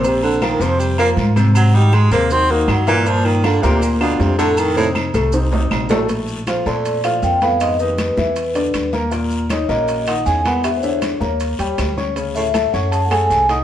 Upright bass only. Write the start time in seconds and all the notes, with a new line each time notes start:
Already playing: A#1
0.60 F2
1.17 G#2
2.11 D#2
2.68 G2
3.63 D2
4.20 F2
5.14 C2
5.71 A#1
6.66 A#2
7.23 F2
8.17 E2
8.74 D#2
9.69 A#1
10.26 E2
11.21 D#2
11.59 D#2
11.79 D2
12.74 F#2
13.30 C2